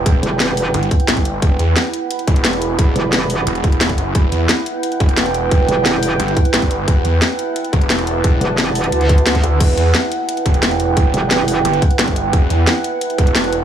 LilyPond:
<<
  \new Staff \with { instrumentName = "Ambient pad" } { \time 4/4 \key e \minor \tempo 4 = 176 << { g''1 | b''1~ | b''1 | g''1~ |
g''1 | a''1~ | a''1 | g''1~ |
g''1 | a''1 | } \\ { <e' b' fis''>1~ | <e' b' fis''>1~ | <e' b' fis''>1~ | <e' b' fis''>1~ |
<e' b' fis''>1~ | <e' b' fis''>1~ | <e' b' fis''>1~ | <e' b' fis''>1~ |
<e' b' fis''>1~ | <e' b' fis''>1 | } >> }
  \new Staff \with { instrumentName = "Detuned saw bass" } { \clef bass \time 4/4 \key e \minor e,,8 r4. g,,8 r8 g,,4 | e,,8 e,8 r4. e,,4. | e,,8 r4. e,,4. fis,,8 | e,,8 e,8 r4. e,,4. |
e,,8 r4. g,,8 r8 g,,4 | e,,8 e,8 r4. e,,4. | e,,8 r2. d,8 | e,,8 e,8 r4. e,,4. |
e,,8 r4. g,,8 r8 g,,4 | e,,8 e,8 r4. e,,4. | }
  \new Staff \with { instrumentName = "Wobble bass" } { \clef bass \time 4/4 \key e \minor r8 e,,8 e,,4 r2 | r1 | r8 e,,8 e,,4 r2 | r1 |
r8 e,,8 e,,4 r2 | r1 | r8 e,,8 e,,4 d,4. r8 | r1 |
r8 e,,8 e,,4 r2 | r1 | }
  \new DrumStaff \with { instrumentName = "Drums" } \drummode { \time 4/4 <hh bd>8 hh8 <hh sn>8 hho8 hh16 hh16 <hh bd>16 hh16 <hh sn>16 <hh bd>16 hh8 | <hh bd>8 hh8 <hh sn>8 hh8 hh16 hh16 <hh bd>16 hh16 <hh sn>16 hh16 hh8 | <hh bd>8 hh8 <hh sn>8 hho8 hh16 hh16 <hh bd>16 hh16 <hh sn>16 <hh bd>16 hh8 | <hh bd>8 hh8 <hh sn>8 hh8 hh16 hh16 <hh bd>16 hh16 <hh sn>16 hh16 hh8 |
<hh bd>8 hh8 <hh sn>8 hho8 hh16 hh16 <hh bd>16 hh16 <hh sn>16 <hh bd>16 hh8 | <hh bd>8 hh8 <hh sn>8 hh8 hh16 hh16 <hh bd>16 hh16 <hh sn>16 hh16 hh8 | <hh bd>8 hh8 <hh sn>8 hho16 hh16 hh16 hh16 <hh bd>16 hh16 <hh sn>16 <hh bd>16 hh8 | <cymc hh bd>8 hh8 <hh sn>8 hh8 hh16 hh16 <hh bd>16 hh16 <hh sn>16 hh16 hh8 |
<hh bd>8 hh8 <hh sn>8 hho8 hh16 hh16 <hh bd>16 hh16 <hh sn>16 <hh bd>16 hh8 | <hh bd>8 hh8 <hh sn>8 hh8 hh16 hh16 <hh bd>16 hh16 <hh sn>16 hh16 hh8 | }
>>